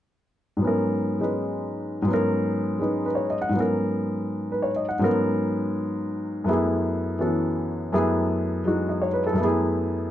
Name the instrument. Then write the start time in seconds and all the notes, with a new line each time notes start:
grand piano
0.57 G#2 F#3
0.62 B3 C#4
0.67 A#4
1.20 G#3 C#4 D#4 B4
2.02 G#2 F#3
2.08 B3 C#4
2.14 A#4
2.79 G#3 C#4 D#4 B4
3.06 B4
3.15 C#5
3.30 D#5
3.42 F#5
3.49 G#2 F#3
3.55 B3 C#4
3.60 A#4
4.52 B4
4.62 C#5
4.76 D#5
4.89 F#5
4.99 G#2 F#3 B3
5.03 C#4 A#4
6.44 F#2 F#3 A3 B3
6.48 E4 G#4
7.18 E3 B3 C#4 F#4 A4
7.92 F#2 F#3 A3 B3 E4 G#4
8.64 F#3 G#3 D#4 F#4
8.89 D#5
9.02 C#5
9.13 B4
9.26 A4
9.33 F#2 F#3
9.37 A3 B3
9.42 E4 G#4